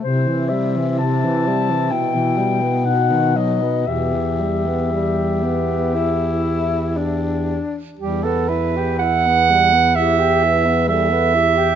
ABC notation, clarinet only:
X:1
M:4/4
L:1/8
Q:1/4=60
K:Em
V:1 name="Clarinet"
c e a2 g2 f ^d | e6 z2 | z4 G B A G |]